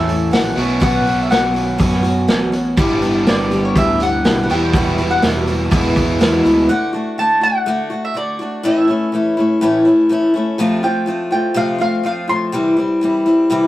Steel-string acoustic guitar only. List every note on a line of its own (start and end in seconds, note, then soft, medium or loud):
0.08 0.31 A3 soft
0.08 0.32 C#4 soft
0.08 0.33 A4 soft
0.31 0.57 E3 medium
0.31 0.57 A3 medium
0.31 0.57 C#4 medium
0.31 0.56 A4 medium
0.56 0.80 B3 soft
0.56 0.81 C#4 soft
0.56 0.81 F#4 medium
0.80 1.05 B2 medium
0.80 1.06 F#3 medium
0.80 1.06 B3 medium
0.80 1.05 C#4 medium
0.80 1.04 F#4 medium
1.05 1.30 B3 soft
1.05 1.31 C#4 soft
1.05 1.30 F#4 medium
1.30 1.55 F#3 medium
1.30 1.56 B3 medium
1.30 1.55 C#4 medium
1.30 1.53 F#4 medium
1.54 1.78 B3 soft
1.54 1.79 C#4 soft
1.54 1.79 F#4 medium
1.78 2.04 B2 medium
1.78 2.04 F#3 medium
1.78 2.04 B3 medium
1.78 2.04 C#4 medium
1.78 2.01 F#4 medium
2.03 2.28 B3 soft
2.03 2.29 C#4 soft
2.03 2.28 F#4 medium
2.28 2.53 F#3 medium
2.28 2.53 B3 medium
2.28 2.52 C#4 medium
2.28 2.51 F#4 medium
2.52 2.78 B3 soft
2.52 2.78 C#4 medium
2.52 2.77 F#4 medium
2.77 3.02 G2 medium
2.77 3.02 D3 medium
2.77 3.02 E3 medium
2.77 3.03 G3 loud
2.77 3.01 B3 loud
2.77 3.00 G4 loud
3.02 3.26 E3 medium
3.02 3.27 G3 medium
3.02 3.27 B3 medium
3.02 3.26 G4 medium
3.27 3.51 E3 medium
3.27 3.52 G3 medium
3.27 3.51 B3 medium
3.27 3.50 G4 medium
3.51 3.75 E3 soft
3.51 3.76 G3 medium
3.51 3.76 B3 soft
3.51 3.76 G4 medium
3.76 4.00 G2 medium
3.76 4.01 D3 medium
3.76 4.01 E3 medium
3.76 4.01 G3 medium
3.76 4.01 B3 medium
3.76 4.00 G4 medium
4.01 4.23 E3 soft
4.01 4.25 G3 soft
4.01 4.26 B3 soft
4.01 4.25 G4 medium
4.24 4.49 E3 medium
4.24 4.50 G3 medium
4.24 4.49 B3 medium
4.24 4.49 G4 medium
4.49 4.74 E3 soft
4.49 4.74 G3 soft
4.49 4.74 B3 soft
4.49 4.74 F#4 soft
4.74 4.98 E2 medium
4.74 4.98 B2 medium
4.74 4.99 E3 medium
4.74 4.99 G3 medium
4.74 4.98 B3 medium
4.74 4.97 F#4 medium
4.98 5.21 E3 soft
4.98 5.22 G3 soft
4.98 5.23 B3 medium
4.98 5.23 F#4 medium
5.22 5.47 E3 medium
5.22 5.47 G3 medium
5.22 5.47 B3 medium
5.22 5.45 F#4 medium
5.46 5.71 E3 soft
5.46 5.72 G3 soft
5.46 5.72 B3 soft
5.46 5.71 F#4 soft
5.71 5.96 E2 medium
5.71 5.96 B2 medium
5.71 5.96 E3 medium
5.71 5.96 G#3 medium
5.71 5.95 B3 medium
5.71 5.94 E4 medium
5.95 6.18 E3 soft
5.95 6.19 G#3 medium
5.95 6.20 B3 medium
5.95 6.20 E4 medium
6.19 6.44 E3 medium
6.19 6.45 G#3 medium
6.19 6.44 B3 medium
6.19 6.42 E4 medium
6.44 6.68 E3 soft
6.44 6.69 G#3 medium
6.44 6.69 B3 medium
6.44 6.68 E4 medium
6.69 6.93 D3 medium
6.69 6.94 A3 medium
6.69 6.93 D4 medium
6.69 6.92 F#4 medium
6.93 7.18 A3 medium
6.93 7.18 D4 medium
6.93 7.17 F#4 medium
7.18 7.42 D3 medium
7.18 7.43 A3 medium
7.18 7.42 D4 medium
7.18 7.40 F#4 medium
7.41 7.65 A3 soft
7.41 7.67 D4 soft
7.41 7.66 F#4 medium
7.66 7.91 D3 medium
7.66 7.91 A3 medium
7.66 7.90 D4 medium
7.66 7.89 F#4 medium
7.90 8.14 A3 soft
7.90 8.16 D4 soft
7.90 8.15 F#4 medium
8.14 8.39 D3 medium
8.14 8.40 A3 medium
8.14 8.40 D4 medium
8.14 8.38 F#4 medium
8.39 8.64 A3 soft
8.39 8.65 D4 medium
8.39 8.64 F#4 medium
8.63 8.88 A2 medium
8.63 8.88 E3 medium
8.63 8.89 A3 medium
8.63 8.88 C#4 medium
8.63 8.86 E4 loud
8.88 9.12 A3 medium
8.88 9.13 C#4 medium
8.88 9.12 E4 medium
9.12 9.37 E3 medium
9.12 9.37 A3 medium
9.12 9.38 C#4 medium
9.12 9.36 E4 medium
9.37 9.62 A3 medium
9.37 9.62 C#4 medium
9.37 9.61 E4 medium
9.61 9.86 A2 loud
9.61 9.86 E3 loud
9.61 9.86 A3 loud
9.61 9.86 C#4 loud
9.61 9.84 E4 loud
9.85 10.09 A3 medium
9.85 10.11 C#4 medium
9.85 10.10 E4 medium
10.09 10.34 E3 medium
10.09 10.34 A3 medium
10.09 10.35 C#4 medium
10.09 10.33 E4 medium
10.34 10.58 A3 medium
10.34 10.59 C#4 medium
10.34 10.58 E4 medium
10.58 10.83 F2 medium
10.58 10.83 C3 loud
10.58 10.83 F3 medium
10.58 10.83 A3 loud
10.58 10.83 C4 loud
10.58 10.82 F4 loud
10.83 11.05 F3 soft
10.83 11.06 A3 medium
10.83 11.07 C4 medium
10.83 11.07 F4 medium
11.06 11.31 F3 medium
11.06 11.32 A3 medium
11.06 11.31 C4 medium
11.06 11.29 F4 medium
11.31 11.54 F3 soft
11.31 11.55 A3 soft
11.31 11.55 C4 soft
11.31 11.55 F4 medium
11.54 11.80 F2 medium
11.54 11.80 C3 medium
11.54 11.80 F3 medium
11.54 11.80 A3 medium
11.54 11.79 C4 loud
11.54 11.77 F4 loud
11.78 12.02 F3 soft
11.78 12.03 A3 soft
11.78 12.05 C4 medium
11.78 12.04 F4 soft
12.03 12.28 F3 medium
12.03 12.29 A3 medium
12.03 12.28 C4 medium
12.03 12.26 F4 medium
12.28 12.53 F3 soft
12.28 12.53 A3 soft
12.28 12.53 C4 medium
12.28 12.53 F4 medium
12.52 12.77 C3 medium
12.52 12.78 E3 loud
12.52 12.78 G3 loud
12.52 12.77 C4 medium
12.52 12.75 E4 medium
12.77 13.01 G3 soft
12.77 13.03 C4 medium
12.77 13.02 E4 medium
13.01 13.26 E3 medium
13.01 13.27 G3 medium
13.01 13.26 C4 medium
13.01 13.25 E4 medium
13.26 13.50 G3 medium
13.26 13.51 C4 medium
13.26 13.51 E4 medium
13.50 13.67 C3 medium
13.50 13.67 E3 loud
13.50 13.67 G3 loud
13.50 13.67 C4 loud
13.50 13.67 E4 loud